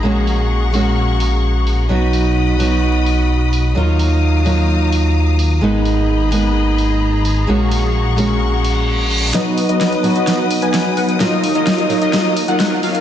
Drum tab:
HH |--o---o---o---o-|--o---o---o---o-|--o---o---o---o-|--o---o---o---o-|
SD |----------------|----------------|----------------|----------------|

HH |--o---o---o---o-|x-oxxxoxx-oxx-ox|x-oxxxoxx-oxx-ox|
SD |----------------|o---o---o---o---|o---o---o---o---|